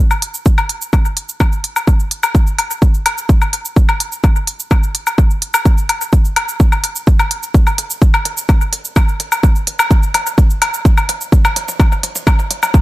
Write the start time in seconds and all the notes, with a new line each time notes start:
0.11 low woodblock, shaker
0.22 closed hi-hat
0.34 shaker
0.46 kick, mid tom, shaker
0.58 low woodblock, shaker
0.69 closed hi-hat
0.82 shaker
0.93 kick, mid tom, low woodblock, shaker
1.05 shaker
1.17 closed hi-hat
1.29 shaker
1.40 kick, mid tom, low woodblock, shaker
1.52 shaker
1.64 closed hi-hat
1.76 low woodblock, shaker
1.87 kick, mid tom, shaker
2.00 shaker
2.11 closed hi-hat
2.23 low woodblock, shaker
2.35 kick, mid tom, shaker
2.47 shaker
2.59 closed hi-hat, low woodblock
2.71 shaker
2.82 kick, mid tom, shaker
2.94 shaker
3.06 closed hi-hat, low woodblock
3.18 shaker
3.29 kick, mid tom, shaker
3.42 low woodblock, shaker
3.53 closed hi-hat
3.65 shaker
3.76 kick, mid tom, shaker
3.89 low woodblock, shaker
4.00 closed hi-hat
4.12 shaker
4.24 kick, mid tom, low woodblock, shaker
4.36 shaker
4.47 closed hi-hat
4.60 shaker
4.71 kick, mid tom, low woodblock, shaker
4.83 shaker
4.95 closed hi-hat
5.07 low woodblock, shaker
5.18 kick, mid tom, shaker
5.31 shaker
5.42 closed hi-hat
5.54 low woodblock, shaker
5.65 kick, mid tom, shaker
5.78 shaker
5.89 closed hi-hat, low woodblock
6.01 shaker
6.13 kick, mid tom, shaker
6.25 shaker
6.36 closed hi-hat, low woodblock
6.49 shaker
6.60 kick, mid tom, shaker
6.72 low woodblock, shaker
6.84 closed hi-hat
6.96 shaker
7.07 kick, mid tom, shaker
7.19 low woodblock, shaker
7.31 closed hi-hat
7.43 shaker
7.54 kick, mid tom, shaker
7.67 low woodblock, shaker
7.78 closed hi-hat, mid tom
7.90 shaker
8.02 kick, mid tom, shaker
8.14 low woodblock, shaker
8.25 closed hi-hat, mid tom
8.37 shaker
8.49 kick, mid tom, low woodblock, shaker
8.61 shaker
8.73 closed hi-hat, mid tom
8.85 shaker
8.96 kick, mid tom, low woodblock, shaker
9.08 shaker
9.20 closed hi-hat, mid tom
9.32 low woodblock, shaker
9.43 kick, mid tom, shaker
9.56 shaker
9.67 closed hi-hat, mid tom
9.79 low woodblock, shaker
9.91 kick, mid tom, shaker
10.03 shaker
10.14 closed hi-hat, mid tom, low woodblock
10.27 shaker
10.38 kick, mid tom, shaker
10.50 shaker
10.62 closed hi-hat, mid tom, low woodblock
10.74 shaker
10.85 kick, mid tom, shaker
10.97 low woodblock, shaker
11.09 closed hi-hat, mid tom
11.21 shaker
11.32 kick, mid tom, shaker
11.45 mid tom, low woodblock, shaker
11.56 closed hi-hat, mid tom
11.68 mid tom, shaker
11.80 kick, mid tom, low woodblock, shaker
11.92 mid tom, shaker
12.03 closed hi-hat, mid tom
12.16 mid tom, shaker
12.27 kick, mid tom, low woodblock, shaker
12.39 mid tom, shaker
12.51 closed hi-hat, mid tom
12.63 mid tom, low woodblock, shaker
12.74 kick, mid tom, shaker